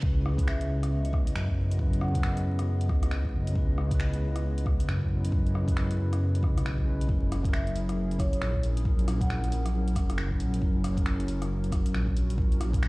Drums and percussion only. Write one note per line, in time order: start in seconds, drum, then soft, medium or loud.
0.03 kick loud
0.26 cross-stick medium
0.38 kick loud
0.38 closed hi-hat medium
0.48 finger snap loud
0.61 closed hi-hat soft
0.83 cross-stick medium
0.83 closed hi-hat medium
1.05 closed hi-hat soft
1.13 kick loud
1.13 cross-stick medium
1.27 closed hi-hat medium
1.36 finger snap loud
1.49 kick medium
1.71 closed hi-hat medium
1.79 kick loud
1.93 closed hi-hat soft
2.01 cross-stick medium
2.15 kick loud
2.15 closed hi-hat medium
2.23 finger snap loud
2.37 closed hi-hat soft
2.59 cross-stick medium
2.59 closed hi-hat medium
2.81 closed hi-hat soft
2.89 kick loud
2.89 cross-stick medium
3.03 cross-stick medium
3.03 closed hi-hat medium
3.11 finger snap loud
3.25 kick medium
3.47 closed hi-hat medium
3.55 kick loud
3.78 cross-stick medium
3.91 kick loud
3.91 closed hi-hat medium
4.00 finger snap loud
4.14 closed hi-hat soft
4.36 cross-stick medium
4.36 closed hi-hat medium
4.58 closed hi-hat soft
4.66 kick loud
4.66 cross-stick soft
4.80 closed hi-hat medium
4.89 finger snap loud
5.01 kick medium
5.25 closed hi-hat medium
5.32 kick loud
5.47 closed hi-hat soft
5.55 cross-stick medium
5.68 kick loud
5.68 closed hi-hat medium
5.77 finger snap loud
5.91 closed hi-hat soft
6.13 cross-stick soft
6.13 closed hi-hat medium
6.35 closed hi-hat soft
6.43 kick loud
6.43 cross-stick soft
6.58 cross-stick medium
6.58 closed hi-hat medium
6.66 finger snap loud
6.78 kick medium
7.01 closed hi-hat medium
7.09 kick loud
7.32 cross-stick medium
7.32 open hi-hat medium
7.44 kick loud
7.44 closed hi-hat soft
7.53 finger snap loud
7.67 closed hi-hat soft
7.76 open hi-hat medium
7.89 cross-stick soft
7.89 closed hi-hat medium
8.11 closed hi-hat soft
8.19 kick loud
8.19 cross-stick soft
8.19 open hi-hat medium
8.33 closed hi-hat medium
8.42 finger snap loud
8.55 kick medium
8.63 open hi-hat medium
8.77 closed hi-hat medium
8.85 kick loud
8.99 closed hi-hat soft
9.08 cross-stick medium
9.08 open hi-hat medium
9.21 kick loud
9.21 closed hi-hat soft
9.30 finger snap loud
9.44 closed hi-hat soft
9.52 open hi-hat medium
9.66 cross-stick medium
9.66 closed hi-hat medium
9.88 closed hi-hat soft
9.95 kick loud
9.95 cross-stick medium
9.95 open hi-hat medium
10.10 cross-stick medium
10.10 closed hi-hat medium
10.18 finger snap loud
10.31 kick medium
10.40 open hi-hat medium
10.54 closed hi-hat medium
10.62 kick loud
10.84 cross-stick medium
10.84 open hi-hat medium
10.97 kick loud
10.97 closed hi-hat medium
11.06 finger snap loud
11.20 closed hi-hat soft
11.28 open hi-hat medium
11.42 cross-stick medium
11.42 closed hi-hat medium
11.64 closed hi-hat soft
11.72 kick loud
11.72 cross-stick medium
11.72 open hi-hat medium
11.86 closed hi-hat medium
11.94 finger snap medium
12.07 kick medium
12.17 open hi-hat medium
12.30 closed hi-hat medium
12.38 kick loud
12.52 closed hi-hat soft
12.61 cross-stick medium
12.61 open hi-hat medium
12.73 kick loud
12.73 closed hi-hat medium
12.83 finger snap loud